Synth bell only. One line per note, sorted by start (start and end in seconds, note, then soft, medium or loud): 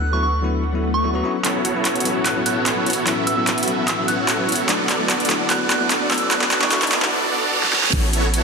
0.00 0.11 F#6 medium
0.13 0.19 C#6 medium
0.23 0.30 C#6 medium
0.94 1.24 C#6 medium
2.26 2.38 F#6 medium
2.46 2.53 F#6 medium
2.56 2.63 F#6 medium
3.27 3.34 E6 medium
3.37 3.44 E6 medium
3.88 4.06 E6 medium
4.08 4.49 F#6 medium
5.50 5.62 F#6 medium
5.70 5.77 F#6 medium
5.81 5.87 F#6 medium
6.11 6.23 E6 medium
6.31 6.60 F#6 medium
6.62 6.68 C#6 medium
6.71 6.78 C#6 medium